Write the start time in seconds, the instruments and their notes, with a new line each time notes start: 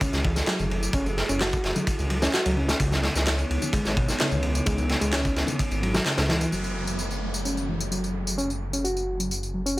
Already playing: analog synth pad E4 F#4 G#4 A4
0.01 detuned saw bass C#2, reed electric piano C#4, kick, ride, tambourine, low conga
0.13 detuned saw bass C#2, snare, tambourine
0.24 reed electric piano E3, kick, ride
0.36 snare, tambourine, high conga
0.47 reed electric piano F#3, snare, clap, ride, tambourine
0.59 detuned saw bass F#1, ride, tambourine, low conga
0.70 ride, high conga
0.83 tambourine
0.93 detuned saw bass F#1, reed electric piano C#4, kick, ride, tambourine
1.06 tambourine, high conga
1.17 snare, ride
1.29 detuned saw bass F#1, reed electric piano C#4, ride, tambourine
1.41 reed electric piano F#4, snare, clap, ride, tambourine, high conga
1.53 kick, tambourine
1.64 detuned saw bass F#1, snare, ride
1.76 reed electric piano F#3, tambourine, high conga, low conga
1.87 kick, ride, tambourine
1.99 detuned saw bass C#2, ride, tambourine
2.10 reed electric piano F#3, ride
2.22 reed electric piano C#4, snare, tambourine, high conga
2.34 reed electric piano F#4, snare, clap, tambourine
2.46 detuned saw bass C#2, reed electric piano F#3, ride, tambourine
2.57 analog synth pad B3 D#4 C#5, reed electric piano C#4, high conga
2.69 snare, tambourine
2.80 detuned saw bass C#2, reed electric piano C#3, kick, ride, tambourine
2.91 snare, tambourine, high conga
3.03 snare, ride
3.15 detuned saw bass C#2, snare, tambourine
3.26 snare, clap, ride, tambourine, high conga
3.39 tambourine
3.50 detuned saw bass C#2, ride
3.62 ride, tambourine, high conga, low conga
3.73 detuned saw bass G#1, reed electric piano G#3, kick, ride, tambourine, low conga
3.85 detuned saw bass G#1, snare, tambourine
3.96 reed electric piano B2, kick, ride
4.08 snare, tambourine, high conga
4.20 reed electric piano C#3, snare, clap, ride, tambourine
4.31 detuned saw bass C#2, ride, tambourine, low conga
4.43 ride, high conga
4.55 tambourine
4.66 detuned saw bass C#2, reed electric piano G#3, kick, ride, tambourine
4.78 tambourine, high conga
4.89 snare, ride
5.01 detuned saw bass C#2, reed electric piano G#3, ride, tambourine
5.12 reed electric piano C#4, snare, clap, ride, tambourine, high conga
5.25 kick, tambourine
5.36 detuned saw bass C#2, snare, ride
5.47 reed electric piano C#3, tambourine, high conga, low conga
5.59 kick, ride, tambourine
5.71 detuned saw bass G#1, ride, tambourine
5.82 reed electric piano F#3, ride
5.94 reed electric piano F#3, snare, tambourine, high conga
6.05 reed electric piano C#3, snare, clap, ride, tambourine
6.17 detuned saw bass C#2, reed electric piano C#3, snare, ride, tambourine
6.29 reed electric piano E3, snare, ride, high conga
6.41 reed electric piano E3, ride, tambourine
6.52 detuned saw bass F#1, reed electric piano F#3, analog synth pad E4 F#4 G#4 A4, tambourine, downlifter
6.64 tambourine
6.87 tambourine
6.99 tambourine
7.11 tambourine
7.34 tambourine
7.45 reed electric piano C#4, tambourine
7.57 tambourine
7.68 reed electric piano E3
7.80 tambourine
7.92 reed electric piano F#3, tambourine
8.04 tambourine
8.27 tambourine
8.38 reed electric piano C#4, tambourine
8.50 tambourine
8.73 reed electric piano C#4, tambourine
8.84 reed electric piano F#4, tambourine
8.97 tambourine
9.20 reed electric piano F#3, tambourine
9.31 tambourine
9.43 tambourine
9.54 reed electric piano F#3
9.66 reed electric piano C#4, tambourine